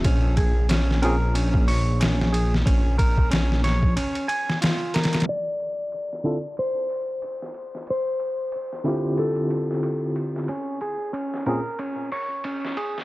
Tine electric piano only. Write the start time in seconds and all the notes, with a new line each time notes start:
1.02 C4 C#4 F4 G#4
6.24 D3 C4 E4 F4 A4
8.84 D3 C4 E4 F4 G4
11.46 A#2 C4 C#4 F4 G#4